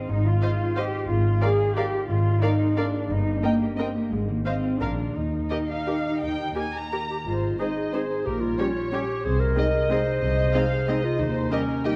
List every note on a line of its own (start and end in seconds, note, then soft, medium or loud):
0.00 0.24 D#3 soft
0.00 0.41 C4 soft
0.00 1.10 D#4 soft
0.00 0.58 F4 soft
0.00 0.75 D#5 soft
0.09 0.36 G#1 medium
0.09 1.08 G#2 soft
0.09 0.25 D#4 medium
0.25 1.10 D#3 soft
0.25 0.76 F4 medium
0.42 1.10 C4 soft
0.42 0.50 C5 soft
0.42 0.50 D#5 soft
0.42 0.50 F5 soft
0.59 0.92 F4 soft
0.75 1.09 G4 medium
0.75 0.85 C5 soft
0.75 1.10 D#5 soft
0.75 0.85 D#5 soft
0.75 0.83 F5 soft
0.93 1.58 F4 soft
1.09 1.36 G#1 medium
1.09 2.08 G#2 soft
1.09 1.41 F4 medium
1.25 2.24 G#3 soft
1.42 2.40 A#3 soft
1.42 1.76 G#4 medium
1.42 1.50 A#4 soft
1.42 1.50 D5 soft
1.42 1.50 F5 soft
1.59 1.92 F4 soft
1.76 2.09 G4 medium
1.76 1.85 A#4 soft
1.76 1.84 D5 soft
1.76 2.75 D5 soft
1.76 1.85 F5 soft
1.93 2.58 F4 soft
2.09 2.36 G#1 medium
2.09 3.12 G#2 soft
2.09 2.41 F4 medium
2.25 3.11 G#3 soft
2.41 3.43 A#3 soft
2.41 2.77 D#4 medium
2.41 2.50 A#4 soft
2.41 2.49 D5 soft
2.41 2.50 F5 soft
2.59 2.93 F4 soft
2.76 3.10 D4 medium
2.76 2.85 A#4 soft
2.76 2.84 D5 soft
2.76 3.11 D5 soft
2.76 2.85 F5 soft
2.94 3.11 F4 soft
3.10 3.37 G1 medium
3.10 4.13 G2 medium
3.10 3.43 D#4 medium
3.26 4.13 G3 soft
3.43 3.79 A#3 medium
3.43 4.13 A#3 soft
3.43 3.51 A#4 soft
3.43 3.52 D#5 soft
3.43 3.52 G5 soft
3.62 3.94 G4 soft
3.78 3.95 C4 medium
3.78 3.86 A#4 soft
3.78 3.86 D#5 soft
3.78 4.82 D#5 soft
3.78 3.87 G5 soft
3.95 4.11 A#3 medium
3.95 4.13 G4 soft
4.12 4.40 G#1 medium
4.12 4.82 G#2 soft
4.12 4.28 G#3 medium
4.28 4.83 D#3 soft
4.28 4.45 A#3 medium
4.45 4.80 C4 medium
4.45 4.82 C4 soft
4.45 4.53 C5 soft
4.45 4.54 D#5 soft
4.45 4.53 F5 soft
4.64 4.98 F4 soft
4.80 5.09 A#1 soft
4.80 5.16 A#2 soft
4.80 5.15 D4 medium
4.80 4.88 A#4 soft
4.80 4.89 A#4 soft
4.80 4.89 F5 soft
4.99 5.16 F4 soft
4.99 5.85 A#4 soft
5.15 5.44 D#2 soft
5.15 6.19 D#3 soft
5.15 6.93 D#4 medium
5.32 6.37 D#4 soft
5.50 6.55 A#3 soft
5.50 5.58 G4 soft
5.50 5.58 A#4 soft
5.50 5.57 D#5 soft
5.69 6.03 G4 soft
5.69 6.20 F5 soft
5.86 5.94 G4 soft
5.86 6.91 A#4 soft
5.86 5.95 A#4 soft
6.04 6.73 G4 soft
6.21 6.50 D#2 soft
6.21 7.28 D#3 soft
6.21 6.56 G5 medium
6.38 8.09 D#4 soft
6.55 7.28 A#3 soft
6.55 6.63 G4 soft
6.55 6.64 A#4 soft
6.55 6.75 G#5 medium
6.74 7.09 G4 soft
6.74 7.27 A#5 soft
6.92 7.01 G4 soft
6.92 7.28 A#4 soft
6.92 7.01 A#4 soft
7.10 7.28 G4 soft
7.10 7.18 G4 soft
7.26 7.54 G#1 soft
7.26 7.54 G#2 soft
7.26 8.27 G#2 soft
7.26 7.59 F4 medium
7.26 7.57 C5 soft
7.43 8.27 G#3 soft
7.59 7.72 G#3 soft
7.59 7.72 C4 soft
7.59 7.93 D#4 medium
7.59 7.67 D#4 soft
7.59 7.67 G#4 soft
7.59 7.93 C5 soft
7.59 7.68 C5 soft
7.59 7.93 D#5 soft
7.76 8.27 G#4 soft
7.93 8.05 G#3 soft
7.93 8.05 C4 soft
7.93 8.02 D#4 soft
7.93 8.02 G#4 soft
7.93 8.27 G#4 medium
7.93 8.01 C5 soft
7.93 8.26 C5 soft
7.93 8.27 C5 soft
8.10 8.27 D#4 soft
8.25 8.53 A#1 soft
8.25 9.26 A#2 soft
8.25 8.53 A#2 soft
8.25 8.42 G4 medium
8.25 8.58 A#4 soft
8.40 9.26 G3 soft
8.40 8.92 F4 medium
8.58 8.71 G3 soft
8.58 8.70 C#4 soft
8.58 8.67 C#4 soft
8.58 8.67 G4 soft
8.58 9.25 C#5 soft
8.58 8.67 C#5 soft
8.58 8.92 C#5 soft
8.76 9.26 G4 soft
8.92 9.04 G3 soft
8.92 9.04 C#4 soft
8.92 9.01 C#4 soft
8.92 9.26 G4 medium
8.92 9.01 G4 soft
8.92 9.01 C#5 soft
8.92 9.26 C#5 soft
9.10 9.26 C#4 soft
9.24 9.51 C2 medium
9.24 9.51 C3 medium
9.24 10.21 C3 soft
9.24 9.41 G#4 medium
9.24 9.56 C5 soft
9.40 10.37 G#3 soft
9.40 9.93 A#4 medium
9.56 9.69 G#3 soft
9.56 9.64 C4 soft
9.56 9.69 D#4 soft
9.56 9.64 G#4 soft
9.56 9.89 C5 soft
9.56 10.20 D#5 medium
9.56 9.66 D#5 soft
9.74 10.70 G#4 soft
9.89 10.02 G#3 soft
9.89 9.98 C4 soft
9.89 10.02 D#4 soft
9.89 9.97 G#4 soft
9.89 10.53 C5 soft
9.89 11.06 C5 medium
9.89 9.99 D#5 soft
10.07 11.03 D#4 soft
10.21 10.49 C2 medium
10.21 11.21 C3 soft
10.21 10.49 C3 medium
10.21 10.53 D#5 medium
10.38 11.21 G#3 soft
10.54 10.66 G#3 soft
10.54 10.62 C4 soft
10.54 10.66 D#4 soft
10.54 10.62 G#4 soft
10.54 10.87 C5 soft
10.54 10.62 D#5 soft
10.54 10.88 F5 medium
10.72 11.21 G#4 soft
10.87 11.00 G#3 soft
10.87 10.95 C4 soft
10.87 11.00 D#4 soft
10.87 10.95 G#4 soft
10.87 11.21 C5 soft
10.87 10.95 D#5 soft
10.87 11.19 D#5 medium
11.04 11.35 D#4 soft
11.04 11.20 F4 medium
11.19 11.46 D#2 medium
11.19 11.96 D#3 soft
11.19 11.53 D#4 medium
11.19 11.52 C5 medium
11.36 11.96 D#4 soft
11.51 11.64 G3 soft
11.51 11.60 A#3 soft
11.51 11.87 C#4 medium
11.51 11.64 D#4 soft
11.51 11.60 G4 soft
11.51 11.84 G4 soft
11.51 11.85 A#4 soft
11.51 11.59 D#5 soft
11.69 11.96 D#5 soft
11.85 11.96 G3 soft
11.85 11.93 A#3 soft
11.85 11.96 D#4 soft
11.85 11.96 D#4 medium
11.85 11.93 G4 soft
11.85 11.96 G4 soft
11.85 11.93 D#5 soft
11.85 11.96 G5 medium